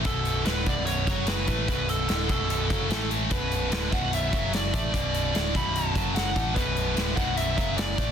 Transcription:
<<
  \new Staff \with { instrumentName = "Lead electric guitar" } { \time 4/4 \key b \minor \tempo 4 = 148 a'4 b'8 d''8 cis''4 b'4 | b'8 a'4 a'2 r8 | b'4. fis''8 e''4 d''8 d''8~ | d''4. b''8 a''4 fis''4 |
b'4. fis''8 e''4 d''4 | }
  \new Staff \with { instrumentName = "Distorted electric guitar" } { \clef bass \time 4/4 \key b \minor <b,, fis, b,>4 <d, a, d>8 <b,, fis, b,>4 <fis, cis fis>4 <a, e a>8 | <b,, fis, b,>4 <d, a, d>8 <b,, fis, b,>4 <fis, cis fis>8 <a, e a>4 | <b,, fis, b,>4 <d, a, d>8 <b,, fis, b,>4 <fis, cis fis>4 <a, e a>8 | <b,, fis, b,>4 <d, a, d>8 <b,, fis, b,>4 <fis, cis fis>4 <a, e a>8 |
<b,, fis, b,>4 <d, a, d>8 <b,, fis, b,>4 <fis, cis fis>4 <a, e a>8 | }
  \new Staff \with { instrumentName = "Picked electric bass" } { \clef bass \time 4/4 \key b \minor b,,,4 d,,8 b,,,4 fis,,4 a,,8 | b,,,4 d,,8 b,,,4 fis,,8 a,,4 | b,,,4 d,,8 b,,,4 fis,,4 a,,8 | b,,,4 d,,8 b,,,4 fis,,4 a,,8 |
b,,,4 d,,8 b,,,4 fis,,4 a,,8 | }
  \new DrumStaff \with { instrumentName = "Drums" } \drummode { \time 4/4 <hh bd>8 hh8 <hh sn>8 <hh bd>8 hh8 <hh bd>8 <hh sn>8 <hh bd>8 | <hh bd>8 hh8 <hh sn>8 <hh bd>8 hh8 <hh bd>8 <hh sn>8 hh8 | <hh bd>8 hh8 <hh sn>8 <hh bd>8 hh8 <hh bd>8 <hh sn>8 <hh bd>8 | <hh bd>8 hh8 <hh sn>8 <hh bd>8 hh8 <hh bd>8 <hh sn>8 <hh bd>8 |
<hh bd>8 hh8 <hh sn>8 <hh bd>8 hh8 <hh bd>8 <hh sn>8 <hh bd>8 | }
>>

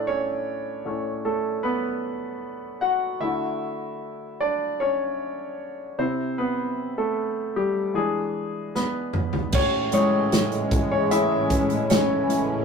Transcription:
<<
  \new Staff \with { instrumentName = "Grand piano" } { \time 4/4 \key a \major \tempo 4 = 76 <cis' cis''>4. <a a'>8 <b b'>4. <fis' fis''>8 | <e' e''>4. <d' d''>8 <cis' cis''>4. <c' c''>8 | <b b'>8. <a a'>8. <g g'>8 gis'4 <b b'>4 | <cis' cis''>8 <cis' cis''>4~ <cis' cis''>16 <cis' cis''>16 <e' e''>4 <cis' cis''>4 | }
  \new Staff \with { instrumentName = "Grand piano" } { \clef bass \time 4/4 \key a \major <a, a>4 <a, a cis'>8 r2 r8 | <d a fis'>8 r2. <c e'>8~ | <c e'>2 <e gis d'>4. r8 | r8 <a, gis>4. <a, gis cis'>8 r4. | }
  \new Staff \with { instrumentName = "Steel-string acoustic guitar" } { \time 4/4 \key a \major r1 | r1 | r1 | <a, e'>8 gis8 cis'8 e'8 e8 cis'8 gis8 e'8 | }
  \new Staff \with { instrumentName = "Analog synth pad" } { \clef bass \time 4/4 \key a \major r1 | r1 | r1 | <a, e gis cis'>1 | }
  \new DrumStaff \with { instrumentName = "Drums" } \drummode { \time 4/4 r4 r4 r4 r4 | r4 r4 r4 r4 | r4 r4 r4 sn8 toml16 tomfh16 | <cymc bd>8 hh8 <hh sn>16 hh16 <hh bd>8 hh8 <hh bd>16 hh16 <hh sn>8 hh8 | }
>>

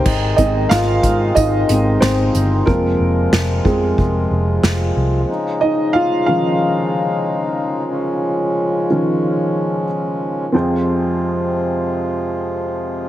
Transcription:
<<
  \new Staff \with { instrumentName = "Upright piano" } { \time 4/4 \key f \minor \tempo 4 = 92 r8 <ees' ees''>8 <f' f''>4 <ees' ees''>4 <c' c''>4 | <bes bes'>4. aes'2 r8 | r8 <ees' ees''>8 <f' f''>8 <f' f''>2~ <f' f''>8~ | <f' f''>2. r4 |
<c' f' aes' c''>1 | }
  \new Staff \with { instrumentName = "Upright piano" } { \clef bass \time 4/4 \key f \minor r8 <ees aes c'>2 <ees aes c'>8 r4 | <f aes c'>4. <f aes c'>8 r2 | r4. <ees f des'>2~ <ees f des'>8~ | <ees f des'>4. <ees f des'>4. r4 |
f,1 | }
  \new Staff \with { instrumentName = "Accordion" } { \time 4/4 \key f \minor ees'1 | f'1 | ees'1 | des'1 |
<c f aes f'>1 | }
  \new Staff \with { instrumentName = "Accordion" } { \clef bass \time 4/4 \key f \minor << { <ees aes>1 | <f aes>1~ | <f aes>1~ | <f aes>1 |
r1 | } \\ { c1~ | c1 | des1~ | des1 |
r1 | } >> }
  \new Staff \with { instrumentName = "Picked electric bass" } { \clef bass \time 4/4 \key f \minor aes,,8 aes,,8 aes,,8 aes,8 aes,,8 aes,,8 aes,,8 g,,8 | f,,8 f,,8 f,,8 f,8 f,,8 f,,8 f,,8 c,8 | r1 | r1 |
r1 | }
  \new DrumStaff \with { instrumentName = "Drums" } \drummode { \time 4/4 <cymc bd>8 <hh bd>8 <hh sn>8 <hh bd>8 <hh bd>8 hh8 <hh sn>8 hh8 | bd4 sn8 bd8 bd4 sn4 | r4 r4 r4 r4 | r4 r4 r4 r4 |
r4 r4 r4 r4 | }
>>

